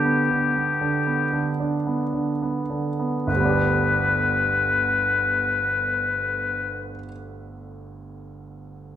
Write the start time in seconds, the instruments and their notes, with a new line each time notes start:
Already playing: grand piano G2 D3 B3 D4 G4, oboe G4
0.05 grand piano B3
0.31 grand piano D3
0.56 grand piano B3
0.81 grand piano D3
1.07 grand piano B3
1.33 grand piano D3
1.60 grand piano D4
1.87 grand piano B3
2.14 grand piano D3
2.42 grand piano B3
2.70 grand piano D3
2.99 grand piano B3
3.27 grand piano G1, oboe B4
3.32 grand piano D2
3.36 grand piano G3
3.41 grand piano B3
3.45 grand piano D4
3.49 grand piano G4